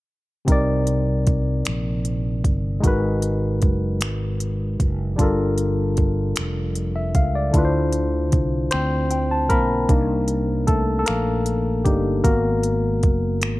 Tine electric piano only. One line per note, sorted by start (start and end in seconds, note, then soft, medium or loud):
0.45 2.78 C3 medium
0.45 2.79 C4 medium
0.45 2.79 D#4 medium
0.50 2.80 A#4 medium
0.50 2.81 D5 medium
2.80 5.13 G#3 medium
2.80 5.14 D#4 medium
2.80 5.15 F#4 medium
2.86 5.16 A#4 soft
2.86 5.17 B4 medium
5.16 7.49 G3 medium
5.16 7.49 D4 medium
5.16 7.50 F4 medium
5.21 7.51 A4 medium
5.21 7.52 A#4 medium
6.96 7.14 E5 medium
7.15 7.34 F5 medium
7.35 7.72 D5 medium
7.51 9.84 D3 medium
7.51 9.85 D4 medium
7.51 9.86 E4 medium
7.56 9.86 F4 medium
7.56 7.63 B4 medium
7.65 8.70 C5 medium
8.71 9.47 C4 medium
8.71 9.46 C5 medium
9.11 9.29 G5 medium
9.31 9.49 A5 medium
9.49 9.88 A#3 medium
9.49 10.71 A#4 medium
9.49 9.87 B5 medium
9.90 10.42 A#3 soft
9.90 10.42 D4 soft
9.90 10.42 D#4 soft
10.67 10.98 A3 medium
10.67 10.98 A4 medium
10.99 11.06 A4 medium
11.06 11.82 A#3 medium
11.06 11.87 A#4 medium
11.85 12.22 G3 medium
11.85 12.20 A#3 soft
11.85 12.21 D4 soft
11.85 12.21 D#4 soft
11.85 12.25 G4 medium
12.24 13.60 A#3 medium
12.24 13.38 B3 soft
12.24 13.38 F#4 soft
12.24 13.60 A#4 medium